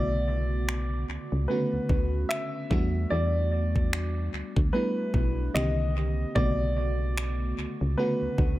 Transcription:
0.00 1.05 B1 loud
0.00 0.90 C#3 medium
0.00 0.89 D3 medium
0.00 0.89 A3 medium
0.00 0.90 B3 medium
0.00 0.94 F#4 medium
0.00 1.04 D5 loud
0.69 finger snap loud
1.09 1.18 C#2 soft
1.32 1.47 C#2 medium
1.48 1.57 C#3 medium
1.48 2.52 A3 medium
1.48 2.52 B3 medium
1.48 2.52 C#4 medium
1.48 2.52 F#4 medium
1.48 2.32 B4 medium
1.55 2.54 D3 medium
1.73 1.80 D2 medium
1.89 2.25 D2 medium
1.89 kick medium
2.29 3.07 E5 loud
2.29 finger snap loud
2.70 3.06 E2 loud
2.70 4.02 G3 medium
2.70 4.02 A3 medium
2.70 4.02 B3 medium
2.70 4.03 D4 medium
2.70 4.03 F#4 medium
2.70 kick loud
3.10 4.29 E2 loud
3.10 4.29 D5 medium
3.76 kick medium
3.93 finger snap loud
4.33 4.43 D2 soft
4.56 4.71 D2 medium
4.56 kick loud
4.73 5.54 G3 medium
4.73 5.55 A3 medium
4.73 5.55 B3 medium
4.73 5.55 D4 medium
4.73 5.56 E4 medium
4.73 5.50 B4 medium
5.14 5.49 B1 medium
5.14 kick medium
5.54 6.25 C2 loud
5.54 6.23 D3 medium
5.54 6.22 D#3 medium
5.54 6.22 A#3 medium
5.54 6.23 C4 medium
5.54 6.23 G4 medium
5.54 6.32 D#5 loud
5.54 finger snap loud
6.35 7.54 B1 loud
6.35 7.39 C#3 medium
6.35 7.38 D3 medium
6.35 7.38 A3 medium
6.35 7.38 B3 medium
6.35 7.39 F#4 medium
6.35 7.53 D5 loud
6.35 kick loud
7.18 finger snap loud
7.58 7.67 C#2 soft
7.81 7.96 C#2 medium
7.97 8.05 C#3 medium
7.97 8.59 A3 medium
7.97 8.59 B3 medium
7.97 8.59 C#4 medium
7.97 8.59 F#4 medium
7.97 8.59 B4 medium
8.03 8.59 D3 medium
8.22 8.29 D2 soft
8.38 8.59 D2 loud
8.38 kick loud

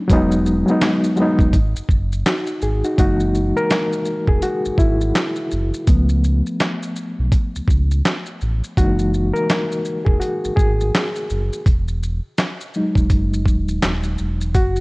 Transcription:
0.00 0.07 F#3 medium
0.00 0.11 A3 medium
0.00 0.11 C#4 medium
0.00 0.11 D4 medium
0.00 0.10 D#4 loud
0.07 0.64 E1 loud
0.07 0.47 F#3 loud
0.07 0.48 G#3 loud
0.07 0.49 B3 loud
0.07 kick loud
0.07 closed hi-hat medium
0.07 shaker medium
0.13 0.50 D#4 loud
0.31 shaker soft
0.46 shaker soft
0.66 1.05 F#3 medium
0.66 1.06 G#3 medium
0.66 1.07 B3 medium
0.66 shaker soft
0.71 1.07 D#4 medium
0.81 snare loud
0.81 clap medium
0.81 closed hi-hat medium
0.81 shaker medium
1.04 shaker medium
1.16 1.53 F#3 medium
1.16 1.54 G#3 medium
1.16 1.55 B3 medium
1.16 shaker soft
1.22 1.56 D#4 medium
1.39 1.53 D#1 medium
1.39 kick loud
1.39 shaker soft
1.53 1.74 G#1 loud
1.53 kick loud
1.53 closed hi-hat medium
1.53 shaker medium
1.76 1.81 F#1 soft
1.76 shaker medium
1.89 2.23 F#1 loud
1.89 kick medium
1.89 shaker soft
2.12 shaker soft
2.26 2.61 D#4 soft
2.26 2.60 F#4 medium
2.26 snare loud
2.26 clap medium
2.26 closed hi-hat medium
2.26 shaker medium
2.47 shaker soft
2.62 2.83 G#1 medium
2.62 2.83 G#4 medium
2.62 shaker soft
2.84 2.98 D#4 medium
2.84 2.98 F#4 medium
2.84 shaker soft
2.98 3.53 F#1 loud
2.98 5.83 E3 medium
2.98 5.83 G#3 medium
2.98 5.84 A#3 soft
2.98 5.84 D#4 medium
2.98 3.53 F#4 loud
2.98 kick loud
2.98 closed hi-hat medium
2.98 shaker medium
3.20 shaker soft
3.35 shaker soft
3.57 4.31 A#4 loud
3.57 shaker soft
3.71 snare loud
3.71 clap medium
3.71 closed hi-hat medium
3.71 shaker medium
3.93 shaker soft
4.06 shaker soft
4.28 4.42 E1 medium
4.28 4.43 G#4 medium
4.28 kick medium
4.42 4.76 F#4 medium
4.42 closed hi-hat medium
4.42 shaker medium
4.66 4.71 G#1 medium
4.66 shaker medium
4.78 5.13 G#1 loud
4.78 5.47 E4 medium
4.78 kick medium
4.78 shaker soft
5.01 shaker medium
5.15 snare loud
5.15 clap medium
5.15 closed hi-hat medium
5.15 shaker medium
5.36 shaker soft
5.51 5.73 F#1 medium
5.51 shaker soft
5.74 shaker soft
5.87 6.42 C#2 loud
5.87 6.92 F3 medium
5.87 6.92 A3 medium
5.87 6.93 B3 medium
5.87 kick loud
5.87 closed hi-hat medium
5.87 shaker medium
6.09 shaker soft
6.24 shaker soft
6.46 shaker soft
6.60 snare loud
6.60 clap medium
6.60 closed hi-hat medium
6.60 shaker medium
6.83 shaker medium
6.96 shaker soft
7.19 7.32 B1 medium
7.32 kick loud
7.32 closed hi-hat medium
7.32 shaker medium
7.56 7.61 C#2 soft
7.56 shaker medium
7.68 8.02 C#2 loud
7.68 kick medium
7.68 shaker soft
7.91 shaker soft
8.05 snare loud
8.05 clap medium
8.05 closed hi-hat medium
8.05 shaker medium
8.26 shaker soft
8.41 8.62 A1 medium
8.41 shaker soft
8.64 shaker medium
8.77 9.32 F#1 loud
8.77 9.28 E3 medium
8.77 9.29 G#3 medium
8.77 9.29 A#3 medium
8.77 9.29 D#4 medium
8.77 9.37 F#4 loud
8.77 kick loud
8.77 closed hi-hat medium
8.77 shaker medium
8.99 shaker soft
9.14 shaker soft
9.33 10.08 A#4 loud
9.33 shaker soft
9.50 snare loud
9.50 clap medium
9.50 closed hi-hat medium
9.50 shaker medium
9.72 shaker medium
9.85 shaker soft
10.05 10.20 E1 medium
10.05 10.12 G#4 medium
10.05 kick medium
10.20 10.36 F#4 medium
10.20 closed hi-hat soft
10.20 shaker soft
10.45 10.50 G#1 medium
10.45 shaker medium
10.56 10.91 G#1 medium
10.56 11.25 G#4 medium
10.56 kick medium
10.56 shaker soft
10.81 shaker soft
10.94 snare loud
10.94 clap medium
10.94 closed hi-hat medium
10.94 shaker medium
11.16 shaker soft
11.30 11.51 F#1 medium
11.30 shaker soft
11.53 shaker soft
11.66 12.21 E1 loud
11.66 kick loud
11.66 closed hi-hat medium
11.66 shaker medium
11.88 shaker soft
12.03 shaker soft
12.38 snare loud
12.38 clap medium
12.38 closed hi-hat medium
12.38 shaker medium
12.61 shaker medium
12.74 14.52 F#3 medium
12.74 14.52 G#3 medium
12.74 14.52 D#4 medium
12.74 shaker soft
12.95 13.09 D#1 medium
12.95 kick loud
12.95 shaker soft
13.10 13.44 F#1 medium
13.10 kick medium
13.10 closed hi-hat medium
13.10 shaker medium
13.33 shaker medium
13.46 13.80 D#1 medium
13.46 kick medium
13.46 shaker soft
13.68 shaker soft
13.82 14.17 D#1 loud
13.82 snare loud
13.82 clap medium
13.82 closed hi-hat medium
13.82 shaker medium
14.03 shaker soft
14.18 14.57 E1 medium
14.18 shaker soft
14.41 shaker medium
14.55 14.80 F#1 loud
14.55 14.80 F#4 loud
14.55 kick loud
14.55 closed hi-hat medium
14.55 shaker medium
14.76 shaker soft

